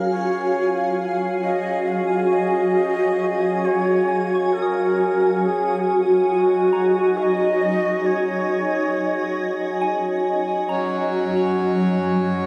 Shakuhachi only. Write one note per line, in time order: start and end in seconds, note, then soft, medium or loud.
0.00 0.10 A#4 medium
0.11 1.12 C#5 loud
1.43 1.89 D#5 loud
1.88 1.93 F#5 medium
1.92 2.35 F5 loud
2.33 3.66 D#5 loud
3.65 4.54 C#5 loud
4.53 5.41 A#4 medium
5.41 6.02 G#4 medium
5.41 5.46 A#4 medium
6.31 7.19 F#4 medium
7.18 7.24 F5 medium
7.23 8.07 D#5 loud
8.06 10.26 C#5 medium